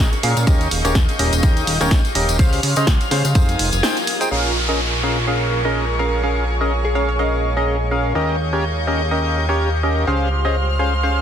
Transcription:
Already playing: ambient pad C#4 G#4 F5, string section A#4 G5 C#6
0.00 analog synth bass A#1, tambourine
0.13 closed hi-hat, tambourine
0.23 analog synth bass A#2, synth stab C#4 G#4 A#4 F5, open hi-hat
0.37 analog synth bass A#2, closed hi-hat, tambourine
0.47 analog synth bass D#2, synth stab C#4 G4 A#4 D#5, ambient pad G4, string section D#5 G6, kick, closed hi-hat, tambourine
0.61 closed hi-hat, tambourine
0.71 analog synth bass D#1, open hi-hat
0.85 analog synth bass D#1, synth stab C#4 G4 A#4 C#5, closed hi-hat, tambourine
0.95 analog synth bass D#2, kick, snare, closed hi-hat, tambourine
1.09 closed hi-hat, tambourine
1.19 analog synth bass D#1, synth stab C#4 G4 A#4 D#5, open hi-hat
1.33 analog synth bass D#1, closed hi-hat, tambourine
1.43 analog synth bass D#2, synth stab C#4 G4 A#4 D#5, kick, closed hi-hat, tambourine
1.57 closed hi-hat, tambourine
1.67 analog synth bass D#1, open hi-hat
1.81 analog synth bass D#1, synth stab C#4 G4 A#4 C#5, snare, closed hi-hat, tambourine
1.91 analog synth bass D#2, kick, snare, closed hi-hat, tambourine
2.05 closed hi-hat, tambourine
2.15 analog synth bass D#1, synth stab C#4 G4 A#4 D#5, open hi-hat
2.29 analog synth bass D#1, closed hi-hat, tambourine
2.39 analog synth bass C#2, synth stab C#4 G#4 C5 F5, ambient pad F4, string section C#5 C6 F6, kick, closed hi-hat, tambourine
2.53 open hi-hat, tambourine
2.63 analog synth bass C#3, open hi-hat
2.76 analog synth bass C#3, synth stab C#4 G#4 C5 D#5, closed hi-hat, tambourine
2.83 ambient pad A#4 D#5
2.87 analog synth bass C#2, kick, snare, closed hi-hat, tambourine
3.01 closed hi-hat, tambourine
3.11 analog synth bass C#3, synth stab C#4 G#4 C5 F5, snare, open hi-hat
3.25 analog synth bass C#3, closed hi-hat, tambourine
3.35 analog synth bass F2, synth stab D#4 G#4 C5 F5, string section F5 D#6 G#6, kick, closed hi-hat, tambourine
3.49 closed hi-hat, tambourine
3.59 analog synth bass F1, open hi-hat
3.72 analog synth bass F1, closed hi-hat, tambourine
3.83 synth stab D#4 G#4 C5 G5, snare, closed hi-hat, tambourine
3.97 closed hi-hat, tambourine
4.07 open hi-hat
4.21 synth stab D#4 G#4 C5 G5, closed hi-hat, tambourine
4.31 analog synth bass A#1, synth stab C#4 G#4 A#4 F5, ambient pad G#4, string section A#4 G#5 C#6, downlifter
4.54 ambient pad C#5
4.69 synth stab C#4 G#4 A#4 D#5
4.80 ambient pad F5
5.03 synth stab C#4 G#4 A#4 F5
5.27 synth stab C#4 G#4 A#4 F5
5.65 synth stab C#4 G#4 A#4 D#5
5.99 synth stab C#4 G#4 A#4 F5, synth pluck A#4
6.23 synth stab C#4 G#4 A#4 F5
6.61 synth stab C#4 G#4 A#4 D#5
6.85 synth pluck G#4
6.95 synth stab C#4 G#4 A#4 F5, synth pluck C#5
7.09 synth pluck C#5
7.19 synth stab C#4 G#4 A#4 F5, synth pluck D#5
7.57 synth stab C#4 G#4 A#4 D#5
7.91 synth stab C#4 G#4 A#4 F5
8.15 analog synth bass D#2, synth stab C#4 G4 A#4 D#5, ambient pad G4, string section D#5 C#6 G6
8.53 synth stab C#4 G4 A#4 C#5
8.87 synth stab C#4 G4 A#4 D#5
9.11 synth stab C#4 G4 A#4 D#5
9.49 synth stab C#4 G4 A#4 C#5
9.83 synth stab C#4 G4 A#4 D#5
10.07 analog synth bass C#2, synth stab C#4 G#4 C5 F5, ambient pad G#4, string section C5 C6 F6
10.33 ambient pad C#4
10.45 synth stab C#4 G#4 C5 D#5
10.79 synth stab C#4 G#4 C5 F5
11.03 synth stab C#4 G#4 C5 F5

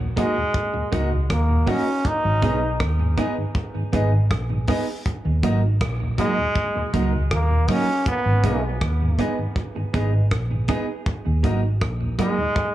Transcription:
Already playing: fingered electric bass A#1
0.16 tonewheel organ F#3 A#3 D#4, trombone G#3, clean electric guitar A#3 D#4 F#4, grand piano D#4 F#4 A#4 D#5, kick, closed hi-hat
0.36 tonewheel organ D#2 A#2
0.54 kick
0.74 tonewheel organ D#2 A#2, muted clean electric guitar stroke
0.92 fingered electric bass C#2, tonewheel organ F#3 A#3 D#4, clean electric guitar A#3 D#4 F#4, grand piano D#4 F#4 A#4 D#5, kick, closed hi-hat
1.12 tonewheel organ D#2 A#2, grand piano A#4 D#5
1.30 fingered electric bass D#2, trombone A#3, kick, cross-stick
1.49 tonewheel organ D#2 A#2
1.66 tonewheel organ F#3 A#3 D#4, clean electric guitar A#3 D#4 F#4, trombone C#4, grand piano D#4 F#4 A#4 D#5, kick, open hi-hat
1.87 grand piano A#4 D#5
2.05 trombone D#4, kick, hi-hat pedal
2.25 fingered electric bass G#1, tonewheel organ G#2 D#3
2.42 fingered electric bass B1, tonewheel organ G#3 B3 D#4, clean electric guitar B3 D#4 G#4, grand piano D#4 G#4 B4 D#5, kick, closed hi-hat
2.80 fingered electric bass D#2, kick, cross-stick
2.99 tonewheel organ G#2 D#3
3.17 tonewheel organ G#3 B3 D#4, clean electric guitar B3 D#4 G#4, grand piano D#4 G#4 B4 D#5, kick, closed hi-hat
3.37 tonewheel organ G#2 D#3
3.55 kick
3.75 tonewheel organ G#2 D#3
3.92 fingered electric bass G#1, tonewheel organ G#3 B3 D#4, clean electric guitar B3 D#4 G#4, grand piano D#4 G#4 B4 D#5, kick, closed hi-hat
4.12 tonewheel organ G#2 D#3, grand piano B4 D#5
4.31 fingered electric bass A#1, kick, cross-stick
4.50 tonewheel organ G#2 D#3
4.67 tonewheel organ G#3 B3 D#4, clean electric guitar B3 D#4 G#4, grand piano D#4 G#4 B4 D#5, kick, cross-stick, open hi-hat
5.06 kick, hi-hat pedal
5.25 tonewheel organ D#2 A#2, fingered electric bass D#2
5.42 fingered electric bass G#1, tonewheel organ F#3 A#3 D#4, clean electric guitar F#3 A#3 D#4, grand piano D#4 F#4 A#4 D#5, kick, closed hi-hat
5.81 fingered electric bass A#1, kick, cross-stick
6.00 tonewheel organ D#2 A#2
6.18 tonewheel organ F#3 A#3 D#4, clean electric guitar F#3 A#3 D#4, trombone G#3, grand piano D#4 F#4 A#4 D#5, kick, closed hi-hat
6.38 tonewheel organ D#2 A#2
6.56 kick
6.75 tonewheel organ D#2 A#2, muted clean electric guitar stroke
6.93 fingered electric bass C#2, tonewheel organ F#3 A#3 D#4, clean electric guitar F#3 A#3 D#4, grand piano D#4 F#4 A#4 D#5, kick, closed hi-hat
7.13 tonewheel organ D#2 A#2, grand piano A#4 D#5
7.31 fingered electric bass D#2, trombone A#3, kick, cross-stick
7.51 tonewheel organ D#2 A#2
7.68 tonewheel organ F#3 A#3 D#4, clean electric guitar F#3 A#3 D#4, trombone C#4, grand piano D#4 F#4 A#4 D#5, kick, cross-stick, open hi-hat
8.06 trombone B3, kick, hi-hat pedal
8.26 fingered electric bass G#1, tonewheel organ G#2 D#3
8.43 fingered electric bass B1, tonewheel organ G#3 B3 D#4, clean electric guitar B3 D#4 G#4, grand piano D#4 G#4 B4 D#5, kick, closed hi-hat
8.81 fingered electric bass D#2, kick, cross-stick
9.01 tonewheel organ G#2 D#3
9.18 tonewheel organ G#3 B3 D#4, clean electric guitar B3 D#4 G#4, grand piano D#4 G#4 B4 D#5, kick, closed hi-hat
9.39 tonewheel organ G#2 D#3
9.56 kick
9.76 tonewheel organ G#2 D#3, muted clean electric guitar stroke
9.93 fingered electric bass G#1, tonewheel organ G#3 B3 D#4, clean electric guitar B3 D#4 G#4, grand piano D#4 G#4 B4 D#5, kick, closed hi-hat
10.13 tonewheel organ G#2 D#3, grand piano B4 D#5
10.31 fingered electric bass A#1, kick, cross-stick
10.51 tonewheel organ G#2 D#3
10.68 tonewheel organ G#3 B3 D#4, clean electric guitar B3 D#4 G#4, grand piano D#4 G#4 B4 D#5, kick, closed hi-hat
11.06 kick
11.26 tonewheel organ D#2 A#2, fingered electric bass D#2
11.43 clean electric guitar F#3 A#3 D#4, tonewheel organ F#3 A#3 D#4, grand piano D#4 F#4 A#4 D#5, kick, closed hi-hat
11.81 fingered electric bass A#1, kick, cross-stick
12.01 tonewheel organ D#2 A#2
12.18 tonewheel organ F#3 A#3 D#4, clean electric guitar F#3 A#3 D#4, trombone G#3, grand piano D#4 F#4 A#4 D#5, kick, cross-stick, closed hi-hat
12.38 tonewheel organ D#2 A#2
12.56 kick

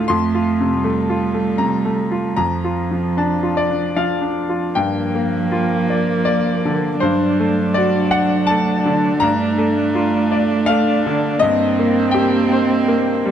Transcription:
Already playing: grand piano F4
0.08 grand piano F2 C6, cello A3
0.35 grand piano F4
0.60 grand piano C3
0.81 cello G3, grand piano A3
1.10 grand piano F4
1.34 grand piano A3
1.58 grand piano C3 A#5
1.85 grand piano A3
2.11 grand piano F4
2.36 grand piano F2 A#5, cello F3
2.64 grand piano F4
2.91 grand piano F3
3.17 grand piano D4 A5
3.43 grand piano F4
3.57 grand piano D5
3.70 grand piano D4
3.96 grand piano F3 F5
4.21 grand piano D4
4.49 grand piano F4
4.75 grand piano G2 G5, cello F3, viola A#3
5.15 grand piano A#3
5.52 grand piano F4
5.90 grand piano D5
6.25 grand piano A#3 D5
6.65 grand piano D3
7.00 grand piano G2 C5, cello F#3, viola D4
7.40 grand piano A3
7.74 grand piano F#4 D5
8.11 grand piano D5 F#5
8.47 grand piano A3 A5
8.86 grand piano D3
9.20 grand piano G2 A#5, cello A3
9.58 grand piano A3
9.95 grand piano F4
10.32 grand piano D5
10.66 grand piano A3 F5
11.06 grand piano D3
11.39 grand piano G2 D#5, cello A#3, viola C4
11.79 grand piano A#3
12.11 grand piano G4 G5
12.52 grand piano C5
12.88 grand piano A#3
13.26 grand piano G3

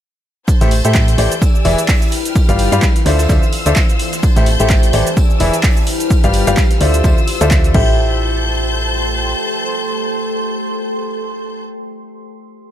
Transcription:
0.48 string section C5 A5 G6, kick, tambourine, shaker
0.61 fm bass A1, grand piano A3 E4 G4 A4 C5 E5, snare, closed hi-hat, shaker
0.71 open hi-hat, tambourine
0.85 fm bass A2, grand piano A3 E4 G4 A4 C5 E5, closed hi-hat, shaker
0.94 kick, snare, clap, tambourine, shaker
1.08 snare, closed hi-hat, shaker
1.18 fm bass A1, grand piano E3 E4 G4 A4 C5 D5, open hi-hat, tambourine
1.32 closed hi-hat, shaker
1.42 string section D5 G#5 E6, kick, tambourine, shaker
1.55 shaker
1.65 fm bass E1, grand piano E3 E4 G#4 B4 D5 E5, snare, open hi-hat, tambourine
1.78 closed hi-hat, shaker
1.88 kick, snare, clap, open hi-hat, shaker
2.02 closed hi-hat, shaker
2.12 string section B4 G5 F6, open hi-hat, tambourine
2.25 closed hi-hat, shaker
2.35 kick, tambourine, shaker
2.49 fm bass G1, grand piano G3 F4 G4 B4 D5 F5, closed hi-hat, shaker
2.59 open hi-hat, tambourine
2.72 fm bass G2, grand piano G3 F4 G4 B4 D5 F5, closed hi-hat, shaker
2.82 kick, snare, clap, tambourine, shaker
2.96 snare, closed hi-hat, shaker
3.06 fm bass D2, grand piano D3 F4 A4 C5 D5 E5, ambient pad E3, string section C5 F5 E6, snare, open hi-hat, tambourine
3.19 snare, closed hi-hat, tambourine, shaker
3.29 fm bass D2, grand piano D3 F4 A4 C5 D5 E5, kick, snare, tambourine, shaker
3.35 ambient pad C5
3.43 shaker
3.53 open hi-hat, tambourine
3.66 fm bass D2, grand piano D3 F4 A4 C5 D5 E5, closed hi-hat, shaker
3.76 kick, snare, clap, tambourine, shaker
3.89 closed hi-hat, shaker
3.99 open hi-hat, tambourine
4.13 snare, closed hi-hat, shaker
4.23 string section A5 G6, kick, tambourine, shaker
4.36 fm bass A1, grand piano A3 E4 G4 A4 C5 E5, snare, closed hi-hat, shaker
4.46 open hi-hat, tambourine
4.60 fm bass A1, grand piano A3 E4 G4 A4 C5 E5, closed hi-hat, shaker
4.70 kick, snare, clap, tambourine, shaker
4.83 snare, closed hi-hat, shaker
4.93 fm bass A1, grand piano E3 E4 G4 A4 C5 D5, open hi-hat, tambourine
5.07 closed hi-hat, shaker
5.17 string section D5 G#5 E6, kick, tambourine, shaker
5.30 shaker
5.40 fm bass E1, grand piano E3 E4 G#4 B4 D5 E5, snare, open hi-hat, tambourine
5.53 closed hi-hat, shaker
5.63 kick, snare, clap, open hi-hat, shaker
5.77 closed hi-hat, shaker
5.87 ambient pad G4, string section B4 G5 F6, open hi-hat, tambourine
6.00 closed hi-hat, shaker
6.10 kick, tambourine, shaker
6.24 fm bass G1, grand piano G3 F4 G4 B4 D5 F5, closed hi-hat, shaker
6.33 open hi-hat, tambourine
6.47 fm bass G1, grand piano G3 F4 G4 B4 D5 F5, closed hi-hat, shaker
6.57 kick, snare, clap, tambourine, shaker
6.71 snare, closed hi-hat, shaker
6.80 fm bass D2, grand piano D3 F4 A4 C5 D5 E5, string section F4 C5 E6, open hi-hat, tambourine
6.94 closed hi-hat, shaker
7.04 fm bass D2, grand piano D3 F4 A4 C5 D5 E5, kick, tambourine, shaker
7.18 shaker
7.28 open hi-hat, tambourine
7.41 fm bass D2, grand piano D3 F4 A4 C5 D5 E5, closed hi-hat, shaker
7.51 kick, snare, clap, tambourine, shaker
7.64 closed hi-hat, shaker
7.74 fm bass A1, grand piano E4 G4 A4 C5 E5, ambient pad A4, string section C5 A5 G6, kick, crash
7.83 ambient pad G5
8.13 ambient pad C6

